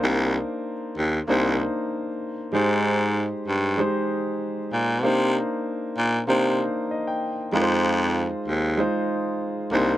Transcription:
<<
  \new Staff \with { instrumentName = "Grand piano" } { \time 4/4 \key c \minor \tempo 4 = 96 << { r1 | r1 | r2. ees''16 g''8. | r1 | } \\ { <bes d' ees' c''>4 r4 <bes d' ees' c''>4~ <bes d' ees' c''>16 r8. | <aes ees' g' c''>4~ <aes ees' g' c''>16 r8. <aes ees' g' c''>4~ <aes ees' g' c''>16 r8. | <bes d' ees' c''>4~ <bes d' ees' c''>16 r8. <bes d' ees' c''>4~ <bes d' ees' c''>16 r8. | <aes ees' f' bes' c''>4~ <aes ees' f' bes' c''>16 r8. <aes ees' f' c''>4~ <aes ees' f' c''>16 r16 <bes d' ees' c''>8 | } >> }
  \new Staff \with { instrumentName = "Baritone saxophone" } { \clef bass \time 4/4 \key c \minor c,8. r8. ees,8 c,8. r4 r16 | aes,4~ aes,16 r16 g,8. r4 r16 bes,8 | c8. r8. bes,8 c8. r4 r16 | f,4~ f,16 r16 ees,8. r4 r16 c,8 | }
>>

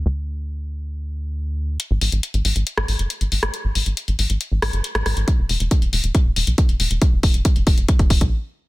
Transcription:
<<
  \new Staff \with { instrumentName = "Analog synth bass" } { \clef bass \time 4/4 \key f \lydian \tempo 4 = 138 d,1 | r16 a,,16 a,,16 a,,16 r16 a,,16 a,,16 a,,16 r16 a,,16 a,,16 g,,16 r16 a,,16 a,,16 a,,16 | r16 a,,16 a,,16 a,,16 r16 a,,16 a,,16 a,,16 r16 a,,16 a,,16 g,,16 r16 a,,16 a,,16 a,,16 | r16 f,,16 f,,16 f,,16 r16 f,,16 f,,16 f,,16 r16 f,,16 f,,16 c,16 r16 f,,16 f,,16 f,,16 |
r16 f,,16 f,,16 f,,16 r16 f,,16 f,,16 f,,16 r16 f,,16 f,,16 c,16 r4 | }
  \new DrumStaff \with { instrumentName = "Drums" } \drummode { \time 4/4 r4 r4 r4 r4 | hh8 hho16 hh16 hh16 hh16 hho16 hh16 hh16 ss16 hho16 hh16 hh16 hh16 hho16 <hh ss>16 | hh8 hho16 hh16 hh16 hh16 hho16 hh16 hh8 <hho ss>16 hh16 hh16 <hh ss>16 <hho ss>16 hh16 | <hh bd>8 hho16 hh16 <hh bd>16 hh16 hho16 hh16 <hh bd>8 hho16 hh16 <hh bd>16 hh16 hho16 hh16 |
<hh bd>8 <hho bd>16 hh16 <hh bd>16 hh16 <hho bd>16 hh16 <hh bd>16 <hh bd>16 <hho bd>16 <hh bd>16 r4 | }
>>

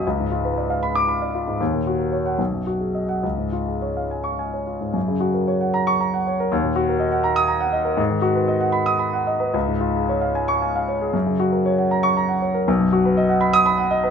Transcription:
\new Staff \with { instrumentName = "Grand piano" } { \time 6/8 \key fis \major \tempo 4. = 77 << { r4. r16 d'''8 r8. | r4 r16 fis''16 r4 r16 fis''16 | r4. r16 cis'''8 r8. | r4. r16 cis'''8 r8. |
r4. r16 dis'''8 r8. | r4. r16 dis'''8 r8. | r4. r16 cis'''8 r8. | r4. r16 cis'''8 r8. |
r4. r16 dis'''8 r8. | } \\ { cis,16 gis,16 eis'16 b'16 d''16 eis''16 b''8 b''16 d''16 eis'16 gis,16 | dis,16 ais,16 fis'16 ais'16 cis''8 b,,16 fis,16 fis'16 gis'16 dis''8 | cis,16 gis,16 eis'16 gis'16 cis''16 eis''16 gis''8 gis''16 cis''16 eis'16 gis,16 | fis,16 cis16 fis'16 ais'16 cis''16 fis''16 ais''8 ais''16 fis''16 cis''16 ais'16 |
dis,16 ais,16 fis'16 ais'16 dis''16 fis''16 ais''8 ais''16 fis''16 dis''16 ais'16 | gis,16 dis16 fis'16 b'16 dis''16 fis''16 b''8 b''16 fis''16 dis''16 b'16 | cis,16 gis,16 eis'16 gis'16 cis''16 eis''16 gis''8 gis''16 eis''16 cis''16 gis'16 | fis,16 cis16 fis'16 ais'16 cis''16 fis''16 ais''8 ais''16 fis''16 cis''16 ais'16 |
b,,16 fis,16 fis'16 b'16 dis''16 fis''16 b''8 b''16 fis''16 dis''16 b'16 | } >> }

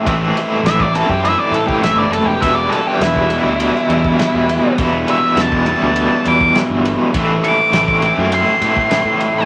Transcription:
<<
  \new Staff \with { instrumentName = "Lead electric guitar" } { \time 4/4 \key e \minor \tempo 4 = 102 r4 e''16 d''16 a'16 g'16 e''16 d''16 a'16 g'16 e''16 d''16 a'16 g'16 | e''16 d''16 a'16 g'16 e'2. | r8 e''8 a''4. d'''8 r4 | r8 d'''4. c'''2 | }
  \new Staff \with { instrumentName = "Overdriven electric guitar" } { \clef bass \time 4/4 \key e \minor <a, e a c' e'>4. <a, e a c' e'>2~ <a, e a c' e'>8 | <e, b, e g b e'>4. <e, b, e g b e'>2~ <e, b, e g b e'>8 | <e, b, e g b e'>4. <e, b, e g b e'>2~ <e, b, e g b e'>8 | <a, e a c' e'>4. <a, e a c' e'>2~ <a, e a c' e'>8 | }
  \new Staff \with { instrumentName = "Fingered electric bass" } { \clef bass \time 4/4 \key e \minor a,,8 r8 a,,8. fis,8 r16 a,8 a,,16 g,,16 fis,,16 e,,16 | e,,8 r8 e,,8. d,8 r16 e,8 r16 e,8 r16 | e,,8 r8 e,,8. d,8 r16 e,8 r16 g,,8 r16 | a,,8 r8 a,,8. fis,8 r16 a,8 r16 a,8 r16 | }
  \new DrumStaff \with { instrumentName = "Drums" } \drummode { \time 4/4 <bd cymr>8 cymr8 <cymr sn>16 bd16 cymr16 bd16 cymr8 cymr16 bd16 <cymr sn>8 cymr8 | <bd cymr>8 <cymr sn>8 <cymr sn>16 bd16 cymr8 cymr16 sn16 cymr16 bd16 <cymr sn>8 cymr8 | <bd cymr>8 cymr8 <cymr sn>16 bd16 cymr8 cymr8 cymr16 bd16 <cymr sn>8 cymr8 | <bd cymr>8 cymr8 <cymr sn>16 bd16 cymr8 cymr8 <cymr sn>16 bd16 <cymr sn>8 cymr8 | }
>>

